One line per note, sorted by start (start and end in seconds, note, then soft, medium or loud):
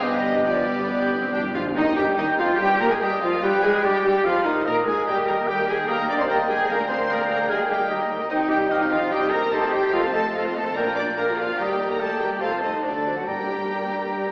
0.01 1.52 G1 medium
0.01 1.30 G2 medium
0.01 0.10 G2 soft
0.01 0.45 G3 medium
0.01 0.46 G3 medium
0.01 0.45 B3 medium
0.01 0.46 B3 medium
0.01 0.46 D4 medium
0.01 0.46 G4 medium
0.01 0.46 B4 medium
0.01 0.46 D#5 medium
0.01 0.47 D#5 medium
0.11 0.17 G2 soft
0.18 0.25 G2 soft
0.26 0.33 G2 soft
0.34 0.41 G2 soft
0.42 0.49 G2 soft
0.42 1.31 G3 medium
0.42 1.31 B3 medium
0.46 0.57 G2 soft
0.46 0.67 F3 medium
0.46 1.52 B3 medium
0.46 1.52 G4 medium
0.46 1.31 G4 medium
0.46 1.31 B4 medium
0.46 1.55 D5 medium
0.46 1.53 D5 medium
0.58 0.64 G2 soft
0.68 0.89 G3 medium
0.73 0.79 G2 soft
0.81 0.87 G2 soft
0.88 0.95 G2 medium
0.88 1.21 B3 medium
0.96 1.03 G2 medium
1.04 1.11 G2 medium
1.12 1.19 G2 medium
1.20 1.27 G2 medium
1.20 1.33 C4 medium
1.28 1.34 G2 medium
1.32 1.42 G2 medium
1.32 1.53 G3 medium
1.32 1.41 D4 medium
1.32 1.53 G4 medium
1.32 1.41 G5 medium
1.44 1.50 G2 medium
1.51 1.58 G2 medium
1.51 1.75 F3 medium
1.51 1.63 G#3 medium
1.51 1.63 F4 medium
1.51 1.63 F5 medium
1.59 1.65 G2 medium
1.66 1.74 G2 medium
1.76 1.95 D#2 medium
1.76 1.97 D#3 medium
1.76 1.85 D#3 medium
1.76 1.82 D#4 medium
1.76 1.85 D#4 medium
1.76 1.84 D#4 medium
1.76 1.96 D#4 medium
1.76 1.97 D#5 medium
1.76 2.97 G5 medium
1.96 2.18 G2 medium
1.96 2.17 G3 medium
1.96 2.18 G3 medium
1.96 2.06 G4 medium
1.96 2.05 G4 medium
1.96 2.18 G4 medium
1.96 2.05 G5 medium
2.17 2.27 D#2 medium
2.17 2.26 D#3 medium
2.17 2.28 D#3 medium
2.17 2.38 D#4 medium
2.17 2.41 D#4 medium
2.17 2.26 D#4 medium
2.17 2.39 D#4 medium
2.17 2.26 D#5 medium
2.38 2.59 F2 medium
2.38 2.48 F3 medium
2.38 2.47 F3 medium
2.38 2.59 F4 medium
2.38 2.58 F4 medium
2.38 2.60 F4 medium
2.38 2.47 F5 medium
2.59 2.80 G2 medium
2.59 2.80 G3 medium
2.59 2.82 G4 medium
2.59 2.80 G4 medium
2.59 2.80 G5 medium
2.80 2.84 A#2 medium
2.80 2.90 A#3 medium
2.80 2.91 A#4 medium
2.80 2.90 A#4 medium
2.80 2.91 A#4 medium
2.80 2.85 A#5 medium
2.90 3.01 G#2 medium
2.90 3.01 G#3 medium
2.90 3.01 G#4 medium
2.90 3.02 G#4 medium
2.90 2.95 G#5 medium
3.00 3.22 G2 medium
3.00 3.09 G3 medium
3.00 3.21 G3 medium
3.00 3.06 G4 medium
3.00 3.22 G4 medium
3.00 3.10 G4 medium
3.00 3.11 G4 medium
3.00 3.42 D#5 medium
3.00 3.21 G5 medium
3.21 3.42 F2 medium
3.21 3.42 F3 medium
3.21 3.42 F4 medium
3.21 3.29 F4 medium
3.21 3.42 F4 medium
3.21 3.43 F4 medium
3.21 3.42 F5 medium
3.42 3.63 G2 medium
3.42 3.62 G3 medium
3.42 3.63 G3 medium
3.42 3.63 G4 medium
3.42 3.50 G4 medium
3.42 3.63 G4 medium
3.42 3.53 G4 medium
3.42 3.86 B4 medium
3.42 3.63 G5 medium
3.63 3.72 G#2 medium
3.63 3.83 G#3 medium
3.63 3.84 G#3 medium
3.63 3.71 G#4 medium
3.63 3.83 G#4 medium
3.63 3.86 G#4 medium
3.63 3.84 G#5 medium
3.83 3.92 G2 medium
3.83 3.92 G3 medium
3.83 4.03 G3 medium
3.83 4.03 G4 medium
3.83 4.04 G4 medium
3.83 4.03 G4 medium
3.83 4.04 G4 medium
3.83 4.26 D5 medium
3.83 4.03 G5 medium
4.04 4.12 G2 medium
4.04 4.12 G3 medium
4.04 4.13 G3 medium
4.04 4.24 G4 medium
4.04 4.14 G4 medium
4.04 4.25 G4 medium
4.04 4.24 G5 medium
4.24 4.33 F2 medium
4.24 4.44 F3 medium
4.24 4.44 F4 medium
4.24 4.45 F4 medium
4.24 4.33 F4 medium
4.24 4.44 F5 medium
4.24 4.67 F5 medium
4.44 4.53 D#2 medium
4.44 4.65 D#3 medium
4.44 4.66 D#4 medium
4.44 4.65 D#4 medium
4.44 4.53 D#4 medium
4.44 4.66 D#5 medium
4.65 4.86 A#2 medium
4.65 4.86 A#3 medium
4.65 4.87 A#4 medium
4.65 4.73 A#4 medium
4.65 4.86 A#4 medium
4.65 5.49 D#5 medium
4.65 4.74 A#5 medium
4.85 4.95 G#2 medium
4.85 5.06 G#3 medium
4.85 5.06 G#4 medium
4.85 5.06 G#5 medium
5.06 6.65 D#2 medium
5.06 5.16 G3 medium
5.06 5.16 G4 medium
5.06 5.26 G4 medium
5.06 5.50 D#5 medium
5.06 5.62 G5 medium
5.06 5.16 G5 medium
5.17 5.27 A#3 soft
5.17 5.27 A#4 soft
5.17 5.27 D#5 soft
5.27 5.37 G3 soft
5.27 5.46 A#3 medium
5.27 5.37 G4 soft
5.27 5.47 A#4 medium
5.27 5.37 G5 medium
5.27 5.36 A#5 medium
5.37 5.47 A#3 soft
5.37 5.47 A#4 soft
5.37 5.47 D#5 soft
5.47 5.56 G3 medium
5.47 5.67 G4 medium
5.47 5.57 G4 medium
5.47 5.87 G5 medium
5.47 5.91 G5 medium
5.47 5.67 G5 medium
5.47 5.57 G5 medium
5.58 5.68 A#3 soft
5.58 5.68 A#4 soft
5.58 5.68 D#5 medium
5.68 5.78 G3 soft
5.68 5.87 G#3 medium
5.68 5.78 G4 soft
5.68 5.88 G#4 medium
5.68 5.78 G5 soft
5.68 5.77 G#5 medium
5.78 5.88 A#3 soft
5.78 5.88 A#4 soft
5.78 5.88 D#5 soft
5.87 5.97 G3 medium
5.87 5.96 A#3 medium
5.87 5.97 G4 medium
5.87 6.08 A#4 medium
5.87 6.28 D#5 medium
5.87 6.32 F5 medium
5.87 6.67 G5 medium
5.87 5.98 G5 medium
5.87 6.08 A#5 medium
5.97 6.08 A#3 soft
5.97 6.08 A#4 soft
5.97 6.08 D#5 soft
6.08 6.18 G3 soft
6.08 6.18 D4 medium
6.08 6.18 G4 soft
6.08 6.18 D5 medium
6.08 6.18 G5 soft
6.08 6.13 D6 medium
6.18 6.28 A#3 soft
6.18 6.29 C4 medium
6.18 6.28 A#4 soft
6.18 6.29 C5 medium
6.18 6.29 D#5 soft
6.18 6.24 C6 medium
6.28 6.38 G3 soft
6.28 6.49 A#3 medium
6.28 6.38 G4 soft
6.28 6.37 A#4 medium
6.28 6.69 D#5 medium
6.28 7.51 G5 medium
6.28 6.38 G5 medium
6.28 6.38 A#5 medium
6.38 6.48 A#3 soft
6.38 6.48 A#4 soft
6.38 6.49 D#5 soft
6.48 6.58 G3 soft
6.48 6.69 G#3 medium
6.48 6.58 G4 soft
6.48 6.68 G#4 medium
6.48 6.59 G5 soft
6.48 6.69 G#5 medium
6.58 6.69 A#3 soft
6.58 6.68 A#4 soft
6.58 6.69 D#5 medium
6.69 7.48 D2 medium
6.69 7.25 D3 medium
6.69 6.78 G#3 medium
6.69 6.78 A#3 medium
6.69 6.78 G#4 soft
6.69 6.89 A#4 medium
6.69 6.78 D5 medium
6.69 7.08 D5 medium
6.69 7.50 F5 medium
6.69 6.89 A#5 medium
6.78 6.89 A#3 soft
6.78 6.89 A#4 soft
6.78 6.88 F5 soft
6.88 6.99 G#3 soft
6.88 6.98 C4 medium
6.88 6.99 G#4 soft
6.88 7.09 C5 medium
6.88 6.99 D5 soft
6.88 7.10 C6 medium
6.99 7.10 A#3 soft
6.99 7.10 A#4 soft
6.99 7.09 F5 soft
7.09 7.19 G#3 medium
7.09 7.29 A#3 medium
7.09 7.19 G#4 medium
7.09 7.28 A#4 medium
7.09 7.18 D5 medium
7.09 7.52 D5 medium
7.09 7.28 A#5 medium
7.19 7.30 A#3 soft
7.19 7.30 A#4 soft
7.19 7.29 F5 medium
7.29 7.40 G#3 soft
7.29 7.49 A#3 medium
7.29 7.40 G#4 soft
7.29 7.49 A#4 medium
7.29 7.39 D5 soft
7.29 7.49 A#5 medium
7.38 7.50 A#3 soft
7.38 7.50 A#4 soft
7.38 7.49 F5 soft
7.49 8.30 D#2 medium
7.49 7.60 G3 medium
7.49 7.70 G#3 medium
7.49 7.59 G4 soft
7.49 7.69 G#4 medium
7.49 7.90 D#5 medium
7.49 7.89 F5 medium
7.49 7.59 G5 medium
7.49 7.91 G5 medium
7.49 7.58 G#5 medium
7.58 7.70 A#3 soft
7.58 7.70 A#4 soft
7.58 7.69 D#5 soft
7.69 7.80 G3 soft
7.69 7.91 G3 medium
7.69 7.90 G4 medium
7.69 7.80 G4 soft
7.69 7.79 G5 soft
7.69 7.90 G5 medium
7.79 7.90 A#3 soft
7.79 7.90 A#4 soft
7.79 7.89 D#5 soft
7.90 8.00 G3 soft
7.90 8.00 G4 soft
7.90 8.29 D#5 medium
7.90 8.30 D#5 medium
7.90 7.99 G5 medium
7.90 8.31 A#5 medium
7.99 8.10 A#3 soft
7.99 8.10 A#4 soft
7.99 8.10 D#5 soft
8.10 8.20 G3 soft
8.10 8.20 G4 medium
8.10 8.20 G5 soft
8.20 8.30 A#3 soft
8.20 8.30 A#4 soft
8.20 8.30 D#5 soft
8.30 9.90 C2 medium
8.30 8.40 D#3 medium
8.30 8.49 D#4 medium
8.30 8.39 D#4 medium
8.30 8.40 G4 medium
8.30 8.40 C5 medium
8.30 8.38 D#5 medium
8.30 8.39 D#5 medium
8.30 8.72 G5 medium
8.30 8.39 G5 medium
8.40 8.50 C4 soft
8.40 8.49 D#4 soft
8.40 8.51 D#5 soft
8.50 8.70 G3 medium
8.50 8.59 D#4 soft
8.50 8.70 G4 medium
8.50 8.61 G4 soft
8.50 8.61 C5 soft
8.50 8.59 D#5 medium
8.50 8.59 G5 medium
8.50 8.57 G5 medium
8.60 8.70 C4 soft
8.60 8.69 D#4 soft
8.60 8.71 D#5 soft
8.70 8.91 D#3 medium
8.70 8.90 D#4 medium
8.70 8.80 D#4 medium
8.70 8.80 G4 soft
8.70 8.80 C5 medium
8.70 8.79 D#5 medium
8.70 9.00 F5 medium
8.70 8.77 G5 medium
8.81 8.91 C4 soft
8.81 8.91 D#4 soft
8.81 8.91 D#5 medium
8.91 9.12 F3 medium
8.91 9.01 D#4 soft
8.91 9.11 F4 medium
8.91 9.02 G4 soft
8.91 9.01 C5 soft
8.91 9.00 D#5 medium
8.91 9.11 F5 medium
8.91 8.99 G5 medium
9.00 9.11 C4 soft
9.00 9.10 D#4 soft
9.00 9.11 D#5 soft
9.11 9.32 G3 medium
9.11 9.20 D#4 medium
9.11 9.32 G4 medium
9.11 9.21 G4 medium
9.11 9.20 C5 medium
9.11 9.20 D#5 medium
9.11 9.51 D#5 medium
9.11 9.31 G5 medium
9.11 9.20 G5 medium
9.21 9.32 C4 soft
9.21 9.31 D#4 soft
9.21 9.31 D#5 soft
9.32 9.52 A#3 medium
9.32 9.41 D#4 soft
9.32 9.42 G4 soft
9.32 9.52 A#4 medium
9.32 9.42 C5 medium
9.32 9.41 D#5 soft
9.32 9.39 G5 medium
9.32 9.52 A#5 medium
9.42 9.52 C4 soft
9.42 9.51 D#4 soft
9.42 9.52 D#5 soft
9.51 9.73 A3 medium
9.51 9.62 D#4 soft
9.51 9.62 G4 soft
9.51 9.73 A4 medium
9.51 9.62 C5 medium
9.51 9.93 C5 medium
9.51 9.61 D#5 medium
9.51 9.61 G5 soft
9.51 9.72 A5 medium
9.63 9.73 C4 soft
9.63 9.72 D#4 soft
9.63 9.73 D#5 soft
9.72 9.83 G3 medium
9.72 9.83 D#4 soft
9.72 9.93 G4 medium
9.72 9.83 G4 soft
9.72 9.83 C5 soft
9.72 9.82 D#5 soft
9.72 9.93 G5 medium
9.72 9.81 G5 soft
9.82 9.94 C4 soft
9.82 9.94 D#4 soft
9.82 9.93 D#5 soft
9.92 10.74 F2 medium
9.92 10.02 F3 medium
9.92 10.03 A3 medium
9.92 10.01 F4 medium
9.92 10.03 A4 medium
9.92 10.02 D#5 medium
9.92 10.14 F5 medium
9.92 10.03 F5 medium
9.92 10.47 A5 medium
9.92 10.02 A5 medium
10.03 10.15 C4 soft
10.03 10.15 C5 soft
10.03 10.14 D#5 soft
10.13 10.34 A3 medium
10.13 10.25 A3 soft
10.13 10.35 A4 medium
10.13 10.25 A4 soft
10.13 10.23 D#5 medium
10.13 10.24 F5 soft
10.13 10.34 A5 medium
10.17 10.23 A5 medium
10.25 10.35 C4 soft
10.25 10.36 C5 soft
10.25 10.35 D#5 soft
10.34 10.56 F3 medium
10.34 10.45 A3 medium
10.34 10.55 F4 medium
10.34 10.45 A4 medium
10.34 10.44 D#5 soft
10.34 10.42 F5 medium
10.34 10.44 F5 medium
10.34 10.42 A5 medium
10.45 10.56 C4 soft
10.45 10.56 C5 soft
10.45 10.55 D#5 soft
10.55 10.66 A3 soft
10.55 10.65 A3 medium
10.55 10.76 A4 medium
10.55 10.66 A4 soft
10.55 10.64 D#5 medium
10.55 10.65 F5 soft
10.55 10.75 A5 medium
10.55 10.63 A5 medium
10.65 10.77 C4 soft
10.65 10.77 C5 soft
10.65 10.76 D#5 soft
10.75 11.59 A#1 medium
10.75 10.96 A#3 medium
10.75 10.86 D4 soft
10.75 10.96 A#4 medium
10.75 10.86 A#4 soft
10.75 10.85 D5 medium
10.75 10.85 F5 soft
10.75 11.15 G5 medium
10.75 10.96 A#5 medium
10.75 10.82 A#5 medium
10.86 10.96 A#3 soft
10.86 10.96 F4 soft
10.86 10.97 D5 soft
10.96 11.06 D4 medium
10.96 11.07 D4 soft
10.96 11.07 A#4 soft
10.96 11.17 D5 medium
10.96 11.06 D5 soft
10.96 11.07 F5 soft
10.96 11.03 A#5 soft
10.96 11.04 D6 medium
11.07 11.17 A#3 soft
11.07 11.17 F4 soft
11.07 11.17 D5 soft
11.17 11.27 A#3 medium
11.17 11.27 D4 soft
11.17 11.37 A#4 medium
11.17 11.27 A#4 soft
11.17 11.27 D5 medium
11.17 11.27 F5 soft
11.17 11.58 F5 medium
11.17 11.25 A#5 medium
11.17 11.24 A#5 soft
11.28 11.38 A#3 soft
11.28 11.38 F4 soft
11.28 11.38 D5 soft
11.37 11.58 F3 medium
11.37 11.48 D4 soft
11.37 11.58 F4 medium
11.37 11.48 A#4 soft
11.37 11.48 D5 soft
11.37 11.58 F5 medium
11.37 11.49 F5 soft
11.37 11.44 A#5 soft
11.49 11.59 A#3 soft
11.49 11.59 F4 soft
11.49 11.59 D5 soft
11.58 12.39 D#2 medium
11.58 11.90 G3 medium
11.58 11.69 G3 medium
11.58 11.89 G4 medium
11.58 11.68 A#4 medium
11.58 11.67 D5 medium
11.58 11.68 D#5 soft
11.58 12.02 D#5 medium
11.58 11.89 G5 medium
11.58 11.64 A#5 medium
11.69 11.79 A#3 soft
11.69 11.79 G4 soft
11.69 11.79 D5 soft
11.79 11.89 G3 soft
11.79 11.89 A#4 soft
11.79 11.88 D5 soft
11.79 11.89 D#5 soft
11.79 11.85 A#5 soft
11.89 11.99 A#3 medium
11.89 11.99 A#3 soft
11.89 11.99 G4 soft
11.89 12.00 A#4 medium
11.89 11.99 D5 soft
11.89 12.00 A#5 medium
11.99 12.09 G3 soft
11.99 12.19 A3 medium
11.99 12.20 A4 medium
11.99 12.09 A#4 soft
11.99 12.09 D5 soft
11.99 12.09 D#5 soft
11.99 12.40 G5 medium
11.99 12.20 A5 medium
11.99 12.07 A#5 soft
12.10 12.20 A#3 soft
12.10 12.20 G4 soft
12.10 12.20 D5 soft
12.19 12.30 G3 soft
12.19 12.41 G3 medium
12.19 12.40 G4 medium
12.19 12.30 A#4 soft
12.19 12.29 D5 soft
12.19 12.30 D#5 soft
12.19 12.28 G5 medium
12.19 12.27 A#5 soft
12.30 12.41 A#3 soft
12.30 12.41 G4 soft
12.30 12.40 D5 soft
12.40 12.83 C2 medium
12.40 12.62 F3 medium
12.40 12.50 A3 soft
12.40 12.61 F4 medium
12.40 12.51 A4 soft
12.40 12.50 C5 soft
12.40 12.50 D#5 soft
12.40 12.61 F5 medium
12.40 13.30 A5 medium
12.40 12.47 A5 medium
12.51 12.62 C4 soft
12.51 12.62 C5 soft
12.61 12.72 D#3 soft
12.61 12.72 A3 soft
12.61 12.83 D#4 medium
12.61 12.72 A4 soft
12.61 12.71 C5 soft
12.61 12.72 D#5 soft
12.61 12.83 D#5 medium
12.61 12.68 A5 soft
12.72 12.83 C4 soft
12.72 12.83 C5 soft
12.83 13.27 D2 soft
12.83 13.16 D3 soft
12.83 12.93 F#3 soft
12.83 13.16 D4 medium
12.83 12.93 F#4 soft
12.83 12.93 C5 soft
12.83 12.93 D5 soft
12.83 13.16 D5 soft
12.83 12.91 A5 soft
12.94 13.05 A3 soft
12.94 13.05 A4 soft
12.94 13.05 C5 soft
13.04 13.16 F#3 soft
13.04 13.16 F#4 soft
13.04 13.17 C5 soft
13.04 13.16 D5 soft
13.04 13.13 A5 soft
13.16 13.27 F#3 soft
13.16 13.27 A3 soft
13.16 13.22 F#4 medium
13.16 13.27 A4 soft
13.16 13.28 C5 soft
13.16 13.28 F#5 soft
13.26 13.91 G2 medium
13.26 14.32 G2 soft
13.26 13.37 G3 soft
13.26 14.32 G3 medium
13.26 13.37 G4 soft
13.26 14.32 G4 medium
13.26 13.38 A#4 soft
13.26 13.38 D5 soft
13.26 14.32 G5 medium
13.26 14.32 A#5 medium
13.26 13.36 A#5 soft
13.38 13.49 A#3 soft
13.38 13.49 A#4 soft
13.38 13.50 D5 soft
13.49 13.61 G3 soft
13.49 13.61 G4 soft
13.49 13.61 A#4 soft
13.49 13.61 D5 soft
13.49 13.57 A#5 soft
13.61 13.72 A#3 soft
13.61 13.73 A#4 soft
13.61 13.72 D5 soft
13.72 13.82 G3 soft
13.72 13.82 G4 soft
13.72 13.82 A#4 soft
13.72 13.84 D5 soft
13.72 13.80 A#5 soft
13.83 13.95 A#3 soft
13.83 13.95 A#4 soft
13.83 13.94 D5 soft
13.94 14.05 G3 soft
13.94 14.05 G4 soft
13.94 14.06 A#4 soft
13.94 14.05 D5 soft
13.94 14.03 A#5 soft
14.05 14.17 A#3 soft
14.05 14.16 A#4 soft
14.05 14.17 D5 soft
14.16 14.26 G3 soft
14.16 14.27 G4 soft
14.16 14.27 A#4 soft
14.16 14.28 D5 soft
14.16 14.25 A#5 soft
14.28 14.32 A#3 soft
14.28 14.32 A#4 soft
14.28 14.32 D5 soft